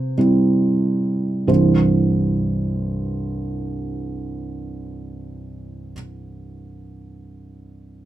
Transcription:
Already playing: C3 C5
0.18 G3 C4 E4
1.47 C2 G2 E3 G3 C4 E4 C5

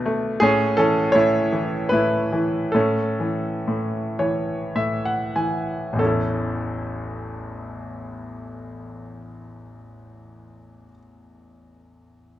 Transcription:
Already playing: B2 A3 D4 A4 B4
0.06 A3
0.40 A2 C#4 G#4
0.77 E3 C#4 A4
1.12 A2 E4 C#5
1.52 E3
1.89 A2 B4
1.93 E4
2.33 E3
2.72 A2 C#4 A4
3.20 E3
3.68 A2
4.19 E3 C#5
4.75 A2 E5
5.05 F#5
5.36 E3 G#5
5.93 A1 E2
5.99 A3 C#4 A4
6.04 E4 A4

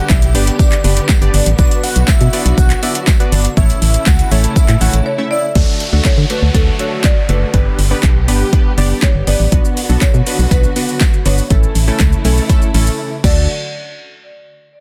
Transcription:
Already playing: D3 G3 B3 D4 G4 B4 D5
0.09 B1 E5, kick, snare, clap, tambourine, shaker
0.22 closed hi-hat, shaker
0.35 G1 B3 D4 G4 B4 D5, open hi-hat, tambourine, shaker
0.47 closed hi-hat, shaker
0.59 D5, kick, tambourine, shaker
0.72 clap, closed hi-hat, shaker
0.84 F#1 B3 D4 G4 B4 D5, open hi-hat, tambourine, shaker
0.97 closed hi-hat, shaker
1.09 kick, snare, clap, tambourine, shaker
1.21 G1 B3 D4 G4 B4 D5, closed hi-hat, shaker
1.34 G1 D5, open hi-hat, tambourine, shaker
1.46 A1, closed hi-hat, shaker
1.59 B1 F#3 B3 D4 F#4 B4 D5, kick, tambourine, shaker
1.71 closed hi-hat, shaker
1.84 F#5, open hi-hat, tambourine, shaker
1.96 B1, closed hi-hat, shaker
2.08 B2 E5, kick, snare, clap, tambourine, shaker
2.21 B2, closed hi-hat, shaker
2.33 B3 D4 F#4 B4 D5 E5, open hi-hat, tambourine, shaker
2.46 B1, closed hi-hat, shaker
2.58 B1 F#5, kick, tambourine, shaker
2.70 clap, closed hi-hat, shaker
2.83 B3 D4 F#4 B4 D5 E5, open hi-hat, tambourine, shaker
2.95 closed hi-hat, shaker
3.07 kick, snare, clap, tambourine, shaker
3.20 B3 D4 F#4 B4 D5, closed hi-hat, shaker
3.32 G1 D5, open hi-hat, tambourine, shaker
3.45 closed hi-hat, shaker
3.57 A1 C#3 E3 A3 C#4 E4 A4 C#5 E5, kick, shaker
3.70 closed hi-hat, shaker
3.82 A1 E5, open hi-hat, tambourine, shaker
3.94 closed hi-hat, shaker
4.06 C#2 F#5, kick, snare, clap, tambourine, shaker
4.19 closed hi-hat, shaker
4.31 A1 A3 C#4 E4 A4 C#5 E5, open hi-hat, tambourine, shaker
4.44 closed hi-hat, shaker
4.56 E5, kick, tambourine, shaker
4.68 A2, clap, closed hi-hat, shaker
4.81 A1 A3 C#4 E4 A4 C#5 F#5, open hi-hat, tambourine, shaker
4.93 A1, closed hi-hat, shaker
5.06 C#5
5.18 A3 C#4 E4 A4 E5
5.31 D5 E5
5.55 D2 D3 F#3 A3 D4 F#4 A4, kick, closed hi-hat, downlifter
5.80 closed hi-hat
5.92 D2 A3 D4 F#4 A4
6.04 D3 C#5, kick, snare, clap, closed hi-hat
6.17 D3
6.30 A3 D4 F#4 A4 B4, closed hi-hat
6.42 D2
6.54 D2 A3 D4 F#4 A4, kick, closed hi-hat
6.79 A3 D4 F#4 A4 C#5, closed hi-hat
7.04 D5, kick, snare, clap, closed hi-hat
7.29 F#1 A3 D4 F#4 A4 B4, closed hi-hat
7.54 G1 G3 B3 D4 G4 B4, kick, closed hi-hat
7.79 G1, open hi-hat
7.91 B3 D4 G4 B4
8.03 B1, kick, snare, clap, closed hi-hat
8.28 G1 B3 D4 G4 B4, open hi-hat
8.53 B3 D4 G4 B4, kick, closed hi-hat
8.78 F#1 B3 D4 G4 D5, open hi-hat
9.02 C#5, kick, snare, clap, closed hi-hat
9.15 G1
9.27 G1 B3 D4 G4 B4 D5, open hi-hat
9.40 A1
9.52 B1 D3 F#3 B3 D4 F#4 B4, kick, closed hi-hat, shaker
9.65 shaker
9.77 open hi-hat, tambourine, shaker
9.89 B1 B3 D4 F#4 A4, shaker
10.01 B2 C#5, kick, snare, clap, closed hi-hat, tambourine, shaker
10.14 B2, shaker
10.26 B3 D4 F#4 B4, open hi-hat, tambourine, shaker
10.39 B1, shaker
10.51 B1 B3 D4 F#4 B4, kick, closed hi-hat, tambourine, shaker
10.64 shaker
10.76 B3 D4 F#4 B4, open hi-hat, tambourine, shaker
10.88 shaker
11.00 kick, snare, clap, closed hi-hat, tambourine, shaker
11.13 shaker
11.25 G1 B3 D4 F#4 B4 C#5, open hi-hat, tambourine, shaker
11.38 shaker
11.50 A1 C#3 E3 A3 C#4 E4 A4, kick, closed hi-hat, tambourine, shaker
11.63 shaker
11.75 A1, open hi-hat, tambourine, shaker
11.87 A3 C#4 E4 A4, shaker
11.99 C#2, kick, snare, clap, closed hi-hat, tambourine, shaker
12.12 shaker
12.25 B1 A3 C#4 E4 A4, open hi-hat, tambourine, shaker
12.37 shaker
12.49 A3 C#4 E4 A4, kick, closed hi-hat, tambourine, shaker
12.62 shaker
12.74 A1 A3 C#4 E4 A4, open hi-hat, tambourine, shaker
12.87 shaker
13.24 D2 D3 F#3 A3 D4 F#4 A4 D5, kick, crash, tambourine

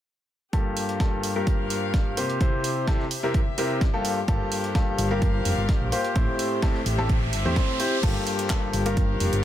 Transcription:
0.53 G2 A#3 F4 G4 A4, kick, closed hi-hat
0.77 C5, closed hi-hat, open hi-hat
0.89 closed hi-hat
1.00 G2 A#3 F4 G4 A4, kick, snare, closed hi-hat
1.23 closed hi-hat, open hi-hat
1.36 G2 A#3 F4 G4 A#4 F5
1.47 kick, closed hi-hat
1.70 closed hi-hat, open hi-hat
1.94 kick, snare, closed hi-hat
2.17 C3 A#3 F4 G4 C5, closed hi-hat, open hi-hat
2.30 closed hi-hat
2.41 C3 C4 E4 G4 C5, kick, closed hi-hat
2.64 closed hi-hat, open hi-hat
2.88 C3 C4 E4 G4 A4, kick, snare, closed hi-hat
3.00 snare
3.11 closed hi-hat, open hi-hat
3.15 E5
3.23 C3 C4 E4 G4 A#4
3.34 kick, closed hi-hat
3.58 C3 C4 E4 G4 A#4, closed hi-hat, open hi-hat
3.81 kick, snare, closed hi-hat
3.94 G2 A#3 F4 G4 A4
4.05 closed hi-hat, open hi-hat
4.28 G1 G2 A#3 F4 G4 A4, kick, closed hi-hat, riser
4.52 closed hi-hat, open hi-hat
4.64 closed hi-hat
4.75 G2 A#3 F4 G4 A4, kick, snare, closed hi-hat
4.98 G1 F5, closed hi-hat, open hi-hat
5.11 G2 A#3 F4 G4 A#4
5.22 kick, closed hi-hat
5.45 F1, closed hi-hat, open hi-hat
5.58 G1
5.69 kick, snare, closed hi-hat
5.81 A#1
5.92 A#3 F4 G4 C5, closed hi-hat, open hi-hat
6.04 closed hi-hat
6.16 A1 A2 C4 E4 G4 C5, kick, closed hi-hat
6.39 closed hi-hat, open hi-hat
6.62 A2 C4 E4 G4 A4, kick, snare, closed hi-hat
6.75 E5, snare
6.86 A1, closed hi-hat, open hi-hat
6.98 A2 C4 E4 G4 A4
7.09 kick, closed hi-hat
7.33 G1, closed hi-hat, open hi-hat
7.45 E2 A2 C4 E4 G4 C5
7.56 A2 C4 C5, kick, snare, closed hi-hat
7.80 C4 E4 G4 C5, closed hi-hat, open hi-hat
8.03 G1 G2 A#3 F4 G4 A4, kick, closed hi-hat, crash
8.27 closed hi-hat, open hi-hat
8.39 closed hi-hat
8.50 G2 A#3 F4 A4, kick, snare, clap, closed hi-hat
8.73 G1, closed hi-hat, open hi-hat
8.86 G2 A#3 F4 G4 A#4 F5, closed hi-hat
8.97 kick, closed hi-hat
9.20 F1, closed hi-hat, open hi-hat
9.33 G1, closed hi-hat

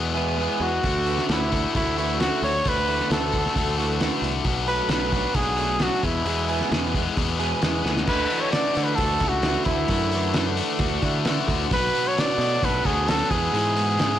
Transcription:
Already playing: E2 B2 E3 G#3 B3 G#4
0.14 E3 G#3 B3 E4 G#4
0.37 E3 G#3 B3 E4 G#4
0.41 B3 G#4
0.60 E2 F#4
0.83 D2 D3 A3 D4 F#4, kick, open hi-hat
1.06 E3 A3 E4 F#4, open hi-hat
1.18 snare
1.28 D2 D3 E3 A3 D4 E4 F#4, snare, open hi-hat
1.52 A3 D4 F#4, kick, open hi-hat
1.75 D2 D3 A3 D4 E4 F#4, kick, open hi-hat
1.96 E3 A3 D4 E4 F#4, open hi-hat
2.01 A3
2.20 D3 E3 A3 D4 E4 F#4, snare, open hi-hat
2.42 D2 C#5, open hi-hat
2.64 D2 D3 A3 D4 F#4 B4, kick, open hi-hat
2.87 E3 A3 E4 F#4, open hi-hat
3.00 snare
3.09 D2 D3 E3 A3 D4 E4 F#4 A4, snare, open hi-hat
3.32 A3 D4 F#4, kick, open hi-hat
3.46 snare
3.55 D2 D3 A3 D4 F#4, kick, open hi-hat
3.77 E3 A3 D4 E4 F#4, open hi-hat
3.99 D3 E3 A3 D4 E4 F#4, snare, open hi-hat
4.22 C2, open hi-hat
4.44 B1 B2 F#3 B3 D4 F#4, kick, open hi-hat
4.67 F#3 A3 D4 A4 B4, open hi-hat
4.89 B1 F#3 A3 B3 D4 F#4 A4 B4, snare, open hi-hat
5.12 B3 D4 F#4, kick, open hi-hat
5.34 B1 B2 F#3 B3 D4 F#4 G#4, kick, open hi-hat
5.57 F#3 A3 B3 D4 F#4 A4, open hi-hat
5.79 F#3 A3 B3 D4 F#4 A4, snare, open hi-hat
6.02 E2 B2 E3 G#3 B3 E4 G#4, kick, open hi-hat
6.25 E2 B2 E3 G#3 B3 G#4, open hi-hat
6.48 G#3 B3 E4 G#4, open hi-hat
6.61 snare
6.71 E2 E3 G#3 B3 E4 G#4, snare, open hi-hat
6.95 E3 G#3 B3 G#4, kick, open hi-hat
7.16 E2 B2 E3 G#3 B3 G#4, kick, open hi-hat
7.39 E3 G#3 B3 E4 G#4, open hi-hat
7.61 E2 E3 G#3 B3 E4 G#4, snare, open hi-hat
7.85 D2, snare
7.97 snare
8.07 D2 D3 A3 D4 B4, kick, crash
8.12 F#4
8.30 E3 A3 D4 F#4, open hi-hat
8.41 C#5
8.52 D3 E3 A3 D5, snare, open hi-hat
8.56 D4 F#4
8.75 D3 A3 D4 F#4, open hi-hat
8.84 B4
8.95 D2 A4, kick, open hi-hat
8.99 F#4
9.20 C#2 A3 D4 E4 F#4, kick, open hi-hat
9.28 F#4
9.43 D3 E3 A3 D4 F#4, snare, open hi-hat
9.65 D2 A3 E4, kick, open hi-hat
9.88 F#2 D3 A3 D4 F#4, kick, open hi-hat
10.12 E3 A3 D4 F#4, open hi-hat
10.34 D3 E3 A3 D4 F#4, snare, open hi-hat
10.57 A3 D4 F#4, open hi-hat
10.79 D2 F#4, kick, open hi-hat
11.02 D3 D4 E4 F#4, kick, open hi-hat
11.06 A3
11.24 D3 E3, snare, open hi-hat
11.28 A3 D4 F#4
11.47 D2 A3, kick, open hi-hat
11.70 B1 B2 F#3 B3 B4, kick, open hi-hat
11.74 D4 F#4
11.93 F#3 D4 F#4, open hi-hat
11.97 B3
12.08 C#5
12.17 B2 F#3 B3 D4 F#4 D5, snare, open hi-hat
12.38 B2 A3 B3 D4 F#4, open hi-hat
12.63 B1 A4 B4, kick, open hi-hat
12.85 D2 B3 D4 F#4 G#4, kick, open hi-hat
13.08 F#3 B3 D4 F#4 A4, snare, open hi-hat
13.30 E2 B2 E3 G#3 B3 G#4, kick, open hi-hat
13.53 E2 G#2 B2 E3 G#3 B3 G#4, open hi-hat
13.77 E3 G#3 B3 G#4, open hi-hat
13.98 E2 B2 E3 G#3 B3 G#4, snare, open hi-hat

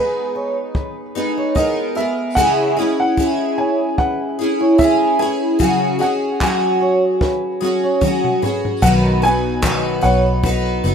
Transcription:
Already playing: G#3 B3 D#4 B4
0.35 C#5
0.75 B4, kick
1.15 G#3 B3 D#4
1.37 C#5
1.55 G#3 B3 D#4 A#4 D#5, kick
1.95 G#3 B3 A#4 B4 E5
2.35 C#3 G#3 C#4 E4 G#4 F#5, kick
2.77 C#4 E4 G#4 D#5
3.00 F#5
3.17 G#3 C#4 E4 G#4, kick
3.58 C#5 G#5
3.98 B4 F#5, kick
4.39 C#4 E4 G#4
4.61 C#5
4.78 G#3 C#4 E4 G#4 E5, kick
5.19 C#4 E4 G#4 B4 G#5
5.59 C#3 F#3 C#4 F#4 G#4, kick
5.99 C#4 F#4 G#4 D#5 F#5
6.40 F#3 C#4 F#4 G#4 G#5, kick, clap
6.81 C#5
7.21 B4, kick, snare
7.61 C#4 F#4 G#4, high tom
7.83 C#5
8.01 F#3 C#4 F#4 G#4, kick, mid tom
8.24 mid tom
8.42 C#4 F#4 G#4 B4, floor tom
8.65 floor tom
8.82 B1 B2 D#3 F#3 B3 D#4 B4 F#5, kick, crash
9.22 F#3 B3 D#4 B4 D#5 G#5
9.62 B2 D#3 F#3 B3 D#4 B4, kick, clap
10.01 B1 F#3 B3 D#4 B4 C#5 F#5
10.43 F#3 B3 D#4 B4, kick
10.84 F#1 F#3 B3 D#4 B4

